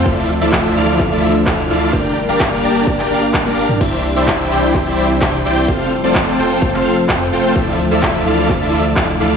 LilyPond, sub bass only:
\new Staff \with { instrumentName = "Sub bass" } { \clef bass \time 4/4 \key d \minor \tempo 4 = 128 d,8. d,8. d,8. d,8. d,8 d,8 | g,,8. g,,8. g,,8. g,,16 g,,8. g,,8. | c,8. c,8. c,8. c,8. c,8 c,8 | f,,8. f,,8. f,,8. f,,8. f,8 f,,8 |
d,8. d,8. d,8. d,8. d,8 d,8 | }